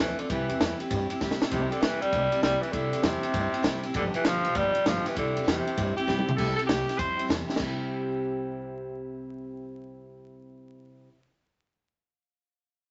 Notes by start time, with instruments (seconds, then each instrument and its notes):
0.00 upright bass D2, tenor saxophone E3, steel-string acoustic guitar F3 C4 F4 A4
0.18 tenor saxophone D3, steel-string acoustic guitar C4 F4 A4, muted upright bass stroke, ride
0.29 upright bass C2, steel-string acoustic guitar C3 G3 C4 E4 G4, tenor saxophone E3, kick, ride
0.48 upright bass E2, steel-string acoustic guitar C4 E4 G4, ride
0.60 upright bass E2, steel-string acoustic guitar C3 G3 C4 E4 G4, snare, ride
0.79 steel-string acoustic guitar C4 E4 G4, ride
0.90 upright bass G2, steel-string acoustic guitar G3 C4 E4 G4, kick, ride
1.10 steel-string acoustic guitar C4 E4 G4, ride
1.21 upright bass G2, steel-string acoustic guitar C3 G3 C4 E4 G4, kick, snare
1.31 snare
1.41 upright bass A#2, steel-string acoustic guitar C4 E4 G4, snare
1.50 upright bass C2, steel-string acoustic guitar C3 G3 C4 E4 G4, tenor saxophone C3, kick, ride
1.71 tenor saxophone D3, steel-string acoustic guitar C4 E4 G4, muted upright bass stroke, ride
1.81 upright bass E2, steel-string acoustic guitar C3 G3 C4 E4 G4, tenor saxophone E3, snare, ride
2.00 upright bass E2, tenor saxophone G3, steel-string acoustic guitar C4 E4 G4, ride
2.10 upright bass C2, steel-string acoustic guitar G3 C4 E4 G4, kick, ride
2.32 steel-string acoustic guitar C4 E4 G4, ride
2.42 upright bass C2, steel-string acoustic guitar C3 G3 C4 E4 G4, tenor saxophone G3, snare, ride
2.61 tenor saxophone E3, steel-string acoustic guitar C4 E4 G4, muted upright bass stroke, ride
2.72 upright bass C2, steel-string acoustic guitar C3 G3 C4 E4 G4, tenor saxophone D3, kick, ride
2.92 upright bass E2, steel-string acoustic guitar C4 E4 G4, ride
3.02 upright bass E2, steel-string acoustic guitar C3 G3 C4 E4 G4, tenor saxophone C3, snare, ride
3.22 steel-string acoustic guitar C4 E4 G4, muted upright bass stroke, ride
3.32 upright bass G2, steel-string acoustic guitar G3 C4 E4 G4, kick, ride
3.52 steel-string acoustic guitar C4 E4 G4, ride
3.62 upright bass G2, steel-string acoustic guitar C3 G3 C4 E4 G4, kick, snare, ride
3.83 upright bass A#2, steel-string acoustic guitar C4 E4 G4, ride
3.94 upright bass G1, steel-string acoustic guitar G2 D3 F3 B3 F4 G4, tenor saxophone D3, kick, ride
4.14 tenor saxophone E3, steel-string acoustic guitar F3 B3 F4 G4, muted upright bass stroke, ride
4.24 upright bass B1, steel-string acoustic guitar G2 D3 F3 B3 F4 G4, tenor saxophone F3, snare, ride
4.44 upright bass B1, steel-string acoustic guitar F3 B3 F4 G4, ride
4.54 upright bass G1, steel-string acoustic guitar F3 B3 F4 G4, tenor saxophone G3, kick, ride
4.74 steel-string acoustic guitar F3 B3 F4 G4, muted upright bass stroke, ride
4.85 upright bass G1, steel-string acoustic guitar G2 D3 F3 B3 F4 G4, tenor saxophone F3, snare, ride
5.04 tenor saxophone E3, steel-string acoustic guitar F3 B3 F4 G4, muted upright bass stroke, snare, ride
5.14 upright bass C2, steel-string acoustic guitar C3 G3 C4 E4 G4, tenor saxophone D3, kick, ride
5.35 upright bass E2, steel-string acoustic guitar C4 E4 G4, ride
5.44 upright bass E2, steel-string acoustic guitar C3 G3 C4 E4 G4, snare, ride
5.48 tenor saxophone C3
5.65 steel-string acoustic guitar C4 E4 G4, ride
5.76 upright bass G2, steel-string acoustic guitar G3 C4 E4 G4, kick, ride
5.96 steel-string acoustic guitar C4 E4 G4, tenor saxophone G4, muted upright bass stroke, ride
6.07 upright bass G2, steel-string acoustic guitar C3 G3 C4 E4 G4, kick, snare
6.19 mid tom
6.27 upright bass A#2, steel-string acoustic guitar C4 E4 G4, floor tom
6.36 upright bass C2, steel-string acoustic guitar C3 G3 C4 E4 G4, tenor saxophone A4, kick, crash
6.56 steel-string acoustic guitar E4 G4, tenor saxophone A4, ride
6.60 steel-string acoustic guitar C4
6.67 upright bass C2, steel-string acoustic guitar C3 G3 C4 E4 G4, tenor saxophone G4, snare, ride
6.88 steel-string acoustic guitar C4 E4 G4, snare, ride
6.97 upright bass F2, steel-string acoustic guitar G3 C4 E4 G4, tenor saxophone C5, kick, ride
7.17 upright bass G2, steel-string acoustic guitar C4 E4 G4, ride
7.27 upright bass E2, steel-string acoustic guitar C3 G3 C4 E4 G4, snare, ride
7.48 steel-string acoustic guitar C4 E4 G4, muted upright bass stroke, snare
7.56 upright bass C2, steel-string acoustic guitar C3 G3, kick, snare, crash
7.61 steel-string acoustic guitar C4 E4 G4